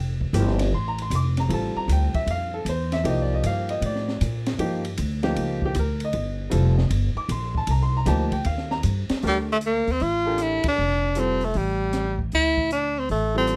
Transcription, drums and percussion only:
0.21 kick soft
0.34 hi-hat pedal medium
0.34 ride medium
0.47 snare soft
0.59 snare soft
0.59 ride medium
0.98 ride soft
1.11 hi-hat pedal medium
1.11 ride medium
1.37 snare soft
1.37 ride soft
1.50 ride medium
1.89 hi-hat pedal medium
1.89 ride medium
2.14 kick medium
2.14 ride soft
2.27 ride medium
2.66 hi-hat pedal medium
2.66 ride medium
2.92 snare soft
2.92 ride soft
3.05 ride medium
3.44 hi-hat pedal medium
3.44 ride medium
3.69 ride soft
3.82 ride medium
3.96 snare soft
4.08 snare soft
4.21 hi-hat pedal medium
4.21 ride medium
4.46 snare medium
4.46 ride soft
4.59 ride medium
4.85 ride soft
4.97 hi-hat pedal medium
4.97 ride medium
5.23 snare soft
5.23 ride soft
5.36 ride medium
5.62 kick medium
5.75 hi-hat pedal medium
5.75 ride medium
6.00 ride medium
6.13 ride medium
6.51 hi-hat pedal medium
6.51 ride medium
6.78 snare soft
6.91 ride medium
7.29 hi-hat pedal medium
7.29 ride medium
7.55 kick medium
7.67 ride medium
8.06 snare soft
8.06 hi-hat pedal medium
8.06 ride medium
8.32 kick medium
8.32 ride soft
8.45 ride medium
8.58 snare soft
8.71 snare soft
8.83 hi-hat pedal medium
8.83 ride medium
9.09 snare medium
9.09 ride medium
9.22 open hi-hat soft
9.61 closed hi-hat soft
9.87 open hi-hat soft
10.00 open hi-hat soft
10.38 cross-stick medium
10.38 closed hi-hat soft
10.64 kick medium
10.64 ride medium
11.15 closed hi-hat soft
11.41 open hi-hat soft
11.54 open hi-hat soft
11.93 cross-stick soft
11.93 snare soft
11.93 closed hi-hat soft
12.19 kick soft
12.32 open hi-hat soft
12.58 kick medium
12.71 closed hi-hat soft
13.09 open hi-hat soft
13.47 cross-stick medium
13.47 closed hi-hat soft

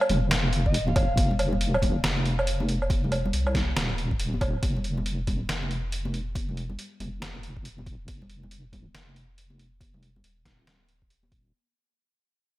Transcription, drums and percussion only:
0.01 low woodblock medium
0.09 closed hi-hat medium
0.09 high conga loud
0.09 low conga medium
0.31 snare loud
0.31 closed hi-hat medium
0.44 high conga medium
0.53 closed hi-hat medium
0.66 kick medium
0.74 closed hi-hat medium
0.88 high conga medium
0.96 kick loud
0.96 closed hi-hat medium
0.96 low woodblock medium
1.17 kick loud
1.17 closed hi-hat medium
1.17 high conga loud
1.31 low conga medium
1.39 closed hi-hat soft
1.39 low woodblock medium
1.53 high conga medium
1.53 low conga medium
1.61 closed hi-hat medium
1.74 low woodblock medium
1.82 kick medium
1.82 closed hi-hat soft
1.82 high conga loud
1.82 low conga medium
2.04 snare loud
2.04 closed hi-hat medium
2.17 high conga medium
2.26 closed hi-hat soft
2.39 low woodblock medium
2.47 closed hi-hat medium
2.60 high conga medium
2.69 closed hi-hat medium
2.82 low woodblock soft
2.90 kick loud
2.90 closed hi-hat medium
2.90 high conga loud
3.04 low conga medium
3.12 closed hi-hat soft
3.12 low woodblock medium
3.25 high conga medium
3.25 low conga medium
3.33 closed hi-hat medium
3.47 low woodblock medium
3.55 kick medium
3.55 snare medium
3.55 closed hi-hat soft
3.55 high conga medium
3.55 low conga medium
3.77 snare loud
3.77 closed hi-hat medium
3.90 high conga medium
3.98 closed hi-hat soft
4.11 kick medium
4.20 closed hi-hat medium
4.34 high conga medium
4.41 kick loud
4.41 closed hi-hat soft
4.41 low woodblock medium
4.63 kick loud
4.63 closed hi-hat medium
4.63 high conga medium
4.77 low conga medium
4.84 closed hi-hat soft
4.98 high conga medium
4.98 low conga medium
5.06 closed hi-hat medium
5.27 kick medium
5.27 closed hi-hat soft
5.27 high conga medium
5.27 low conga medium
5.49 snare loud
5.49 closed hi-hat medium
5.62 high conga medium
5.71 closed hi-hat soft
5.92 closed hi-hat medium
6.05 high conga medium
6.14 closed hi-hat soft
6.35 kick loud
6.35 closed hi-hat medium
6.35 high conga medium
6.49 low conga medium
6.57 closed hi-hat soft
6.70 high conga medium
6.70 low conga medium
6.79 closed hi-hat medium
7.00 closed hi-hat soft
7.00 high conga medium
7.00 low conga medium
7.22 snare loud
7.22 closed hi-hat medium
7.35 high conga medium
7.43 closed hi-hat soft
7.57 kick medium
7.65 closed hi-hat medium
7.78 high conga medium
7.86 kick loud
7.86 closed hi-hat medium
8.08 kick loud
8.08 closed hi-hat medium
8.08 high conga medium
8.22 low conga medium
8.30 closed hi-hat medium
8.43 high conga medium
8.43 low conga medium
8.51 closed hi-hat medium
8.73 kick medium
8.73 closed hi-hat soft
8.73 high conga medium
8.73 low conga medium
8.95 snare loud
8.95 closed hi-hat medium
9.09 high conga medium
9.16 closed hi-hat medium
9.38 closed hi-hat medium
9.50 high conga medium
9.59 closed hi-hat medium
9.81 kick loud
9.81 closed hi-hat medium
9.81 high conga medium
9.94 low conga medium
10.03 closed hi-hat medium
10.16 high conga medium
10.16 low conga medium
10.24 closed hi-hat medium
10.45 kick medium
10.45 snare medium
10.45 closed hi-hat medium
10.45 high conga medium
10.45 low conga medium
10.67 snare loud
10.67 closed hi-hat medium
10.80 high conga medium
10.89 closed hi-hat medium
11.02 kick medium
11.10 closed hi-hat medium
11.23 high conga medium
11.32 kick loud
11.32 closed hi-hat medium

